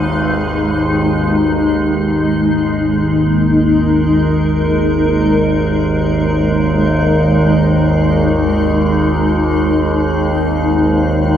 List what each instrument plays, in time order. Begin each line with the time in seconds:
Already playing: synth drone G#1 D#2, ambient pad G#3 D#4 B4
1.38 synth drone G#1 D#2, singing bowl A#3 A#5
2.07 ambient pad A#4
10.57 ambient pad G#4